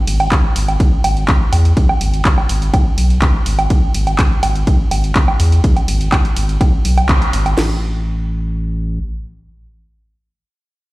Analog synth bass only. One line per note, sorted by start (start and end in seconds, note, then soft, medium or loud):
0.07 0.28 G#1 loud
0.56 0.76 G#1 medium
1.04 1.25 G#1 loud
1.53 1.73 E2 medium
2.01 2.22 G#1 loud
2.49 2.70 G#1 medium
2.98 3.18 B1 medium
3.46 3.67 G#1 loud
3.95 4.15 G#1 loud
4.43 4.63 G#1 medium
4.91 5.12 G#1 loud
5.40 5.60 E2 medium
5.88 6.09 G#1 loud
6.37 6.57 G#1 medium
6.85 7.05 B1 medium
7.33 7.54 G#1 loud
7.58 8.99 A1 medium